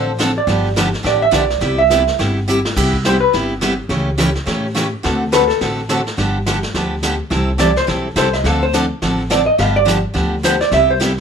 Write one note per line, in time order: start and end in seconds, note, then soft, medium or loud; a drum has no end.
0.00 0.37 A1 medium
0.00 0.11 D3 medium
0.00 0.11 F3 medium
0.00 0.11 C4 medium
0.00 0.11 D4 medium
0.00 0.11 A4 medium
0.00 0.37 C5 medium
0.19 0.30 D3 medium
0.19 0.30 F3 medium
0.19 0.30 C4 medium
0.19 0.30 D4 medium
0.19 0.31 A4 medium
0.19 snare medium
0.19 hi-hat pedal medium
0.38 0.74 D5 medium
0.47 0.93 G1 loud
0.47 0.67 D3 medium
0.47 0.67 F3 medium
0.47 0.68 B3 medium
0.47 0.67 D4 medium
0.47 0.68 G4 medium
0.47 brush sweep medium
0.47 snare medium
0.76 0.87 D3 medium
0.76 0.87 F3 medium
0.76 0.88 B3 medium
0.76 0.88 D4 medium
0.76 0.88 G4 medium
0.76 snare medium
0.76 hi-hat pedal medium
0.94 snare soft
1.03 1.29 A1 medium
1.03 1.23 D3 medium
1.03 1.23 F3 medium
1.03 1.23 B3 medium
1.03 1.24 D4 medium
1.03 1.24 G4 medium
1.03 1.22 D5 medium
1.03 brush sweep soft
1.03 snare soft
1.22 1.33 E5 loud
1.31 1.57 B1 medium
1.31 1.43 D3 medium
1.31 1.43 F3 loud
1.31 1.43 B3 medium
1.31 1.44 D4 medium
1.31 1.44 G4 medium
1.31 1.76 D5 medium
1.31 snare medium
1.31 hi-hat pedal medium
1.50 snare soft
1.61 2.07 C2 loud
1.61 1.80 C3 medium
1.61 1.81 G3 medium
1.61 1.81 B3 medium
1.61 1.81 E4 medium
1.61 1.81 G4 medium
1.61 brush sweep medium
1.61 snare medium
1.78 2.16 E5 loud
1.90 2.01 C3 medium
1.90 2.02 G3 medium
1.90 2.01 B3 medium
1.90 2.02 E4 medium
1.90 2.02 G4 medium
1.90 snare medium
1.90 hi-hat pedal medium
2.07 snare soft
2.19 2.65 G1 loud
2.19 2.38 C3 medium
2.19 2.38 G3 medium
2.19 2.38 B3 medium
2.19 2.38 E4 medium
2.19 2.38 G4 medium
2.19 brush sweep soft
2.19 snare medium
2.48 2.58 C3 medium
2.48 2.58 G3 medium
2.48 2.59 B3 medium
2.48 2.59 E4 loud
2.48 2.59 G4 medium
2.48 hi-hat pedal medium
2.65 snare medium
2.76 3.22 C2 loud
2.76 2.95 C3 medium
2.76 2.95 G3 medium
2.76 2.95 B3 medium
2.76 2.96 E4 medium
2.76 2.96 G4 medium
2.76 brush sweep soft
2.76 kick medium
2.76 snare medium
2.76 crash medium
2.93 kick medium
3.05 3.16 C3 medium
3.05 3.16 G3 medium
3.05 3.16 B3 medium
3.05 3.16 E4 medium
3.05 3.16 G4 medium
3.05 3.20 C5 medium
3.05 snare medium
3.05 hi-hat pedal medium
3.20 3.32 B4 medium
3.33 3.79 G1 medium
3.33 3.52 C3 medium
3.33 3.52 G3 medium
3.33 3.52 B3 medium
3.33 3.53 E4 medium
3.33 3.53 G4 medium
3.33 brush sweep medium
3.33 snare soft
3.61 3.72 C3 medium
3.61 3.72 G3 medium
3.61 3.72 B3 medium
3.61 3.73 E4 medium
3.61 3.73 G4 loud
3.61 snare medium
3.61 hi-hat pedal medium
3.89 4.35 C#2 medium
3.89 4.09 C#3 medium
3.89 4.09 E3 medium
3.89 4.09 A3 medium
3.89 4.09 C#4 medium
3.89 4.09 G4 medium
3.89 brush sweep soft
3.89 snare soft
4.18 4.29 C#3 medium
4.18 4.29 E3 medium
4.18 4.29 A3 medium
4.18 4.29 C#4 medium
4.18 4.29 G4 loud
4.18 snare medium
4.18 hi-hat pedal medium
4.35 snare soft
4.46 4.92 A2 medium
4.46 4.65 C#3 medium
4.46 4.66 E3 medium
4.46 4.66 A3 medium
4.46 4.66 C#4 medium
4.46 4.66 G4 medium
4.46 brush sweep medium
4.46 snare medium
4.75 4.86 C#3 medium
4.75 4.86 E3 medium
4.75 4.86 A3 medium
4.75 4.86 C#4 medium
4.75 4.86 G4 medium
4.75 snare medium
4.75 hi-hat pedal medium
5.03 5.50 D2 loud
5.03 5.23 D3 medium
5.03 5.23 A3 medium
5.03 5.23 C4 medium
5.03 5.23 F#4 medium
5.03 5.23 A4 medium
5.03 brush sweep medium
5.03 snare medium
5.32 5.43 D3 medium
5.32 5.43 A3 medium
5.32 5.43 C4 medium
5.32 5.43 F#4 loud
5.32 5.43 A4 medium
5.32 5.49 B4 medium
5.32 snare medium
5.32 hi-hat pedal medium
5.48 5.60 A4 medium
5.48 snare soft
5.61 6.07 A1 medium
5.61 5.80 D3 medium
5.61 5.80 A3 medium
5.61 5.80 C4 medium
5.61 5.80 F#4 medium
5.61 5.81 A4 medium
5.61 brush sweep medium
5.61 snare medium
5.89 6.00 D3 medium
5.89 6.00 A3 medium
5.89 6.00 C4 medium
5.89 6.00 F#4 medium
5.89 6.00 A4 medium
5.89 snare medium
5.89 hi-hat pedal medium
6.07 snare soft
6.17 6.63 G1 loud
6.17 6.37 D3 medium
6.17 6.37 F3 medium
6.17 6.37 B3 medium
6.17 6.37 D4 medium
6.17 6.38 G4 medium
6.17 brush sweep medium
6.17 snare medium
6.46 6.57 D3 medium
6.46 6.57 F3 medium
6.46 6.57 B3 medium
6.46 6.57 D4 medium
6.46 6.57 G4 medium
6.46 snare medium
6.46 hi-hat pedal medium
6.63 snare soft
6.74 7.20 D2 medium
6.74 6.94 D3 medium
6.74 6.94 F3 medium
6.74 6.94 B3 medium
6.74 6.94 D4 medium
6.74 6.94 G4 medium
6.74 brush sweep soft
6.74 snare soft
7.03 7.13 D3 medium
7.03 7.14 F3 medium
7.03 7.14 B3 medium
7.03 7.14 D4 medium
7.03 7.14 G4 loud
7.03 snare medium
7.03 hi-hat pedal medium
7.30 7.76 C2 loud
7.30 7.50 C3 medium
7.30 7.50 E3 medium
7.30 7.50 G3 medium
7.30 7.50 C4 medium
7.30 7.50 E4 medium
7.30 7.51 A4 medium
7.30 brush sweep medium
7.30 snare medium
7.58 7.70 C3 medium
7.58 7.70 E3 medium
7.58 7.70 G3 medium
7.58 7.70 C4 medium
7.58 7.70 E4 loud
7.58 7.70 A4 medium
7.58 7.76 D5 loud
7.58 snare medium
7.58 hi-hat pedal medium
7.76 7.84 C5 loud
7.76 snare soft
7.87 8.12 B1 medium
7.87 8.07 C3 medium
7.87 8.07 E3 medium
7.87 8.07 G3 medium
7.87 8.07 C4 medium
7.87 8.07 E4 medium
7.87 8.07 A4 medium
7.87 brush sweep medium
7.87 snare soft
8.16 8.40 C2 medium
8.16 8.27 C3 medium
8.16 8.27 E3 medium
8.16 8.27 G3 medium
8.16 8.27 C4 loud
8.16 8.28 E4 medium
8.16 8.28 A4 medium
8.16 8.33 C5 medium
8.16 snare medium
8.16 hi-hat pedal medium
8.33 8.46 D#5 medium
8.33 snare soft
8.44 8.90 D2 loud
8.44 8.64 D3 medium
8.44 8.64 F3 medium
8.44 8.64 C4 medium
8.44 8.65 D4 medium
8.44 8.65 A4 medium
8.44 8.62 F5 loud
8.44 brush sweep soft
8.44 snare medium
8.63 8.74 C5 loud
8.73 8.84 D3 medium
8.73 8.84 F3 medium
8.73 8.85 C4 medium
8.73 8.85 D4 loud
8.73 8.85 A4 loud
8.73 snare medium
8.73 hi-hat pedal medium
9.02 9.47 A1 medium
9.02 9.21 D3 medium
9.02 9.21 F3 medium
9.02 9.21 C4 medium
9.02 9.22 D4 medium
9.02 9.22 A4 medium
9.02 brush sweep medium
9.02 snare medium
9.30 9.41 D3 medium
9.30 9.41 F3 medium
9.30 9.41 C4 loud
9.30 9.41 D4 medium
9.30 9.41 A4 medium
9.30 9.46 D5 medium
9.30 snare medium
9.30 hi-hat pedal medium
9.46 9.58 D#5 medium
9.58 10.04 G1 loud
9.58 9.78 D3 medium
9.58 9.78 F3 medium
9.58 9.78 B3 medium
9.58 9.78 D4 medium
9.58 9.78 G4 medium
9.58 9.76 F5 loud
9.58 brush sweep soft
9.58 snare medium
9.76 9.87 D5 loud
9.85 9.97 D3 medium
9.85 9.97 F3 medium
9.85 9.97 B3 loud
9.85 9.97 D4 medium
9.85 9.97 G4 medium
9.85 snare medium
9.85 hi-hat pedal medium
10.14 10.61 D2 loud
10.14 10.34 D3 medium
10.14 10.34 F3 medium
10.14 10.34 B3 medium
10.14 10.34 D4 medium
10.14 10.35 G4 medium
10.14 brush sweep medium
10.14 snare soft
10.43 10.54 D3 medium
10.43 10.55 F3 medium
10.43 10.55 B3 loud
10.43 10.55 D4 medium
10.43 10.55 G4 loud
10.43 10.61 C5 medium
10.43 snare medium
10.43 hi-hat pedal medium
10.61 10.72 D5 medium
10.61 snare soft
10.72 11.17 C2 loud
10.72 10.91 C3 medium
10.72 10.92 G3 medium
10.72 10.92 B3 medium
10.72 10.92 E4 medium
10.72 10.92 G4 medium
10.72 10.90 E5 loud
10.72 brush sweep soft
10.72 snare medium
10.90 10.97 C5 loud
11.00 11.11 C3 medium
11.00 11.11 G3 medium
11.00 11.11 B3 medium
11.00 11.11 E4 medium
11.00 11.12 G4 medium
11.00 snare medium
11.00 hi-hat pedal medium